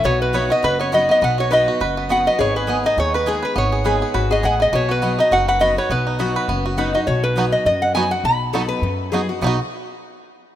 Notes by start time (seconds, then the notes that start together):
0.04 B1 B2 B3 F#4 C#5
0.22 B4
0.33 F#3 B3 D#4 F#4 B4 C#5 D#5 B5
0.49 D#4 F#4 D#5
0.63 F#1 F#2 B4
0.79 B3 C#5
0.92 F#3 B3 D#4 F#4 D#5 B5
1.09 B3 D#5
1.21 B1 B2 B3 F#5
1.38 F#4 C#5
1.51 F#3 B3 D#4 F#4 B4 D#5 B5
1.68 F#4
1.80 F#1 F#2 B4
1.97 B3
2.09 F#3 B3 D#4 F#4 D#5 F#5 B5
2.26 B3 D#4 F#4 D#5
2.39 G#1 G#2 B3 G#4 C#5
2.56 G#4 B4
2.67 G#3 B3 D#4 G#4 D#5 G#5
2.84 D#4 G#4 D#5
2.97 D#2 D#3 G#4 C#5
3.14 B4
3.26 G#3 B3 D#4 G#4 D#5 G#5
3.43 B4
3.56 G#1 G#2 B3 C#5
3.72 G#4
3.84 G#3 B3 D#4 G#4 B4 D#5 G#5
4.02 G#4
4.14 G#1 G#2 F#4 B4
4.31 B3 G#4 D#5
4.43 A1 A2 B3 G#4 D#5 F#5 G#5
4.60 B3 D#5
4.72 B1 B2 B3 F#4 C#5
4.89 F#4 B4
5.02 F#3 B3 D#4 F#4 D#5 B5
5.18 D#4 F#4 D#5
5.31 F#1 F#2 F#4 F#5
5.48 B4 F#5
5.59 F#3 B3 D#4 F#4 D#5 B5
5.76 D#4 F#4 B4 C#5
5.90 B1 B2 B3 B4
6.07 D#4
6.19 F#3 B3 D#4 F#4 D#5 B5
6.36 B4
6.48 F#1 F#2 B3
6.66 F#4
6.77 F#3 B3 D#4 F#4 B4 D#5 F#5 B5
6.93 D#4 F#4 D#5
7.07 B1 B2 F#4 C#5
7.23 B4
7.36 F#3 B3 D#4 F#4 D#5 B5
7.52 D#5
7.65 F#2 D#5
7.82 F#5
7.94 F#3 B3 D#4 F#4 D#5 G#5 B5
8.11 D#4 F#4 F#5
8.24 B1 B2 B5
8.53 F#3 B3 D#4 F#4 A4 D#5 B5
8.69 B4
8.82 F#2
9.12 F#3 B3 D#4 F#4 G#4 D#5 B5
9.29 D#4 F#4
9.41 B1 B2 F#3 B3 D#4 F#4 D#5 B5
9.47 F#4